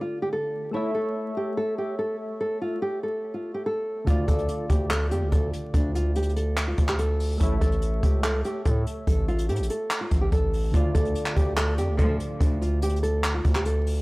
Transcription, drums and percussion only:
4.07 kick loud
4.07 closed hi-hat medium
4.28 kick medium
4.28 closed hi-hat medium
4.39 closed hi-hat soft
4.49 closed hi-hat medium
4.70 kick loud
4.70 closed hi-hat medium
4.90 clap loud
4.90 closed hi-hat medium
5.11 closed hi-hat medium
5.32 kick loud
5.32 closed hi-hat medium
5.53 closed hi-hat medium
5.74 kick loud
5.74 closed hi-hat medium
5.95 closed hi-hat medium
6.15 closed hi-hat medium
6.22 closed hi-hat medium
6.29 closed hi-hat soft
6.36 closed hi-hat medium
6.57 clap loud
6.57 closed hi-hat medium
6.78 kick loud
6.78 closed hi-hat medium
6.88 clap medium
6.99 closed hi-hat medium
7.20 open hi-hat medium
7.41 kick loud
7.41 closed hi-hat medium
7.61 kick medium
7.61 closed hi-hat medium
7.72 closed hi-hat soft
7.82 closed hi-hat medium
8.03 kick loud
8.03 closed hi-hat medium
8.24 clap loud
8.24 closed hi-hat medium
8.45 closed hi-hat medium
8.65 kick loud
8.65 closed hi-hat medium
8.87 closed hi-hat medium
9.07 kick loud
9.07 closed hi-hat medium
9.28 closed hi-hat soft
9.39 closed hi-hat medium
9.49 closed hi-hat medium
9.56 closed hi-hat medium
9.63 closed hi-hat medium
9.70 closed hi-hat medium
9.90 clap loud
9.90 closed hi-hat medium
10.11 kick loud
10.11 closed hi-hat medium
10.32 kick loud
10.32 closed hi-hat medium
10.53 open hi-hat medium
10.74 kick loud
10.74 closed hi-hat medium
10.95 kick medium
10.95 closed hi-hat medium
11.05 closed hi-hat soft
11.15 closed hi-hat medium
11.26 clap medium
11.36 kick loud
11.36 closed hi-hat medium
11.57 clap loud
11.57 closed hi-hat medium
11.78 closed hi-hat medium
11.99 kick loud
11.99 closed hi-hat medium
12.20 closed hi-hat medium
12.41 kick loud
12.41 closed hi-hat medium
12.62 closed hi-hat medium
12.82 closed hi-hat medium
12.89 closed hi-hat medium
12.96 closed hi-hat soft
13.03 closed hi-hat medium
13.24 clap loud
13.24 closed hi-hat medium
13.45 kick loud
13.45 closed hi-hat medium
13.55 clap medium
13.65 closed hi-hat medium
13.87 open hi-hat medium

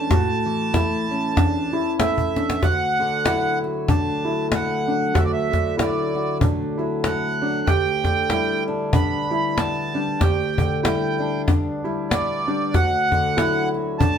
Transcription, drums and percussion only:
0.11 cajon bass medium
0.11 cajon slap soft
0.48 cajon slap soft
0.74 cajon bass medium
0.74 cajon slap medium
1.25 cajon slap soft
1.37 cajon bass medium
1.37 cajon slap soft
1.74 cajon slap soft
2.00 cajon slap medium
2.18 cajon bass soft
2.36 cajon slap medium
2.50 cajon slap medium
2.63 cajon bass medium
2.63 cajon slap soft
3.00 cajon slap soft
3.26 cajon slap medium
3.63 cajon slap soft
3.88 cajon bass medium
4.52 cajon slap medium
5.02 cajon slap soft
5.15 cajon bass medium
5.15 cajon slap soft
5.53 cajon bass medium
5.53 cajon slap soft
5.79 cajon slap medium
6.16 cajon slap soft
6.41 cajon bass medium
7.04 cajon slap medium
7.54 cajon slap soft
7.67 cajon bass medium
7.67 cajon slap soft
8.05 cajon bass medium
8.05 cajon slap soft
8.30 cajon slap medium
8.68 cajon slap soft
8.93 cajon bass medium
9.58 cajon slap medium
10.08 cajon slap soft
10.21 cajon bass medium
10.21 cajon slap soft
10.58 cajon bass medium
10.85 cajon slap medium
11.22 cajon slap soft
11.35 cajon slap soft
11.48 cajon bass medium
11.48 cajon slap soft
11.86 cajon slap soft
12.11 cajon slap medium
12.74 cajon bass medium
12.74 cajon slap soft
13.12 cajon bass medium
13.12 cajon slap soft
13.38 cajon slap medium
13.75 cajon slap soft
14.01 cajon bass medium

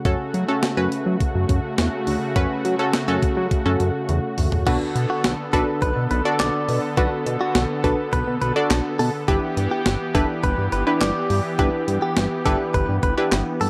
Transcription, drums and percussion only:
0.05 kick loud
0.05 closed hi-hat medium
0.34 closed hi-hat medium
0.63 snare loud
0.63 closed hi-hat medium
0.92 closed hi-hat medium
1.20 kick medium
1.20 closed hi-hat medium
1.49 kick medium
1.49 closed hi-hat medium
1.78 snare loud
1.78 closed hi-hat medium
2.07 open hi-hat medium
2.36 kick loud
2.36 closed hi-hat medium
2.65 closed hi-hat medium
2.93 snare loud
2.93 closed hi-hat medium
3.22 kick medium
3.22 closed hi-hat medium
3.51 kick medium
3.51 closed hi-hat medium
3.80 closed hi-hat medium
4.09 closed hi-hat medium
4.09 high tom medium
4.38 mid tom medium
4.38 open hi-hat medium
4.52 floor tom medium
4.67 kick loud
4.67 closed hi-hat medium
4.67 crash loud
4.96 closed hi-hat medium
5.24 snare loud
5.24 closed hi-hat medium
5.53 kick medium
5.53 closed hi-hat medium
5.82 kick medium
5.82 closed hi-hat medium
6.11 closed hi-hat medium
6.40 snare loud
6.40 clap medium
6.40 closed hi-hat medium
6.69 open hi-hat medium
6.97 kick loud
6.97 closed hi-hat medium
7.26 closed hi-hat medium
7.55 snare loud
7.55 closed hi-hat medium
7.84 kick medium
7.84 closed hi-hat medium
8.13 kick medium
8.13 closed hi-hat medium
8.42 closed hi-hat medium
8.70 snare loud
8.70 clap medium
8.70 closed hi-hat medium
8.99 open hi-hat medium
9.28 kick loud
9.28 closed hi-hat medium
9.57 closed hi-hat medium
9.86 snare loud
9.86 closed hi-hat medium
10.15 kick medium
10.15 closed hi-hat medium
10.44 kick medium
10.44 closed hi-hat medium
10.72 closed hi-hat medium
11.01 snare loud
11.01 clap medium
11.01 closed hi-hat medium
11.30 open hi-hat medium
11.59 kick loud
11.59 closed hi-hat medium
11.88 closed hi-hat medium
12.17 snare loud
12.17 closed hi-hat medium
12.46 kick medium
12.46 closed hi-hat medium
12.74 kick medium
12.74 closed hi-hat medium
13.03 kick medium
13.03 closed hi-hat medium
13.32 snare loud
13.32 clap medium
13.32 closed hi-hat medium
13.61 open hi-hat medium

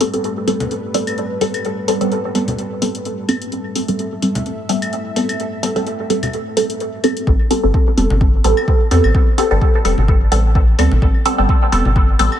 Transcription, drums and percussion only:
0.01 open hi-hat medium
0.14 closed hi-hat soft
0.24 closed hi-hat soft
0.48 open hi-hat medium
0.60 closed hi-hat soft
0.60 low conga medium
0.71 closed hi-hat soft
0.94 open hi-hat medium
1.07 closed hi-hat soft
1.07 claves medium
1.18 closed hi-hat soft
1.41 open hi-hat medium
1.54 closed hi-hat soft
1.54 claves medium
1.65 closed hi-hat soft
1.88 open hi-hat medium
2.01 closed hi-hat soft
2.12 closed hi-hat soft
2.35 open hi-hat medium
2.48 closed hi-hat soft
2.48 low conga medium
2.58 closed hi-hat soft
2.82 open hi-hat medium
2.95 closed hi-hat soft
3.05 closed hi-hat soft
3.29 open hi-hat medium
3.29 claves medium
3.42 closed hi-hat soft
3.52 closed hi-hat soft
3.76 open hi-hat medium
3.88 closed hi-hat soft
3.99 closed hi-hat soft
4.22 open hi-hat medium
4.35 closed hi-hat soft
4.35 low conga medium
4.46 closed hi-hat soft
4.69 open hi-hat medium
4.82 closed hi-hat soft
4.82 claves medium
4.93 closed hi-hat soft
5.16 open hi-hat medium
5.29 closed hi-hat soft
5.29 claves medium
5.40 closed hi-hat soft
5.63 open hi-hat medium
5.76 open hi-hat soft
5.87 closed hi-hat soft
6.10 open hi-hat medium
6.23 closed hi-hat soft
6.23 low conga medium
6.23 claves medium
6.33 closed hi-hat soft
6.57 open hi-hat medium
6.70 closed hi-hat soft
6.80 closed hi-hat soft
7.04 open hi-hat medium
7.04 claves medium
7.17 closed hi-hat soft
7.27 kick loud
7.51 open hi-hat medium
7.74 kick loud
7.98 open hi-hat medium
8.10 low conga medium
8.21 kick loud
8.44 open hi-hat medium
8.57 claves medium
8.68 kick medium
8.91 open hi-hat medium
9.04 claves medium
9.15 kick loud
9.38 open hi-hat medium
9.61 kick loud
9.85 open hi-hat medium
9.98 low conga medium
10.08 kick loud
10.32 open hi-hat medium
10.55 kick loud
10.79 open hi-hat medium
10.79 claves medium
10.92 low conga medium
11.02 kick loud
11.26 open hi-hat medium
11.49 kick loud
11.72 open hi-hat medium
11.85 low conga medium
11.96 kick loud
12.19 open hi-hat medium
12.32 claves medium

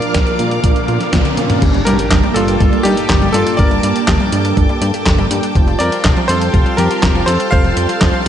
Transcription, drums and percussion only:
0.02 closed hi-hat soft
0.14 kick loud
0.14 snare loud
0.14 closed hi-hat loud
0.27 closed hi-hat soft
0.39 closed hi-hat medium
0.51 closed hi-hat soft
0.64 kick loud
0.64 closed hi-hat medium
0.76 closed hi-hat soft
0.88 closed hi-hat soft
1.01 snare soft
1.01 closed hi-hat soft
1.13 kick loud
1.13 snare loud
1.13 closed hi-hat medium
1.13 high tom medium
1.25 closed hi-hat soft
1.25 high tom medium
1.37 closed hi-hat medium
1.37 mid tom medium
1.50 closed hi-hat soft
1.50 mid tom medium
1.62 kick loud
1.62 closed hi-hat medium
1.62 crash loud
1.74 closed hi-hat soft
1.87 closed hi-hat loud
1.99 closed hi-hat medium
2.11 kick loud
2.11 snare loud
2.11 clap loud
2.11 closed hi-hat medium
2.24 closed hi-hat soft
2.36 closed hi-hat medium
2.48 closed hi-hat medium
2.60 kick loud
2.60 closed hi-hat medium
2.73 closed hi-hat soft
2.85 closed hi-hat loud
2.97 closed hi-hat medium
3.10 kick loud
3.10 snare loud
3.10 clap loud
3.10 closed hi-hat medium
3.22 closed hi-hat soft
3.34 closed hi-hat loud
3.47 closed hi-hat medium
3.59 kick loud
3.59 closed hi-hat medium
3.71 closed hi-hat soft
3.83 closed hi-hat loud
3.96 closed hi-hat medium
4.08 kick loud
4.08 snare loud
4.08 clap loud
4.08 closed hi-hat medium
4.20 closed hi-hat soft
4.32 closed hi-hat medium
4.45 closed hi-hat medium
4.57 kick loud
4.57 closed hi-hat medium
4.69 closed hi-hat soft
4.82 closed hi-hat medium
4.94 closed hi-hat medium
5.06 kick loud
5.06 snare loud
5.06 clap loud
5.06 closed hi-hat medium
5.18 closed hi-hat soft
5.31 closed hi-hat medium
5.43 closed hi-hat medium
5.55 kick loud
5.55 closed hi-hat soft
5.68 closed hi-hat soft
5.80 closed hi-hat medium
5.92 closed hi-hat medium
6.05 kick loud
6.05 snare loud
6.05 clap loud
6.05 closed hi-hat medium
6.17 closed hi-hat soft
6.29 closed hi-hat medium
6.41 closed hi-hat medium
6.54 kick loud
6.54 closed hi-hat medium
6.66 closed hi-hat soft
6.78 closed hi-hat medium
6.91 closed hi-hat medium
7.03 kick loud
7.03 snare loud
7.03 clap loud
7.03 closed hi-hat medium
7.15 closed hi-hat soft
7.28 closed hi-hat medium
7.40 closed hi-hat medium
7.52 kick loud
7.52 closed hi-hat soft
7.65 closed hi-hat soft
7.77 closed hi-hat medium
7.89 closed hi-hat medium
8.01 kick loud
8.01 snare loud
8.01 clap loud
8.01 closed hi-hat medium
8.14 closed hi-hat soft

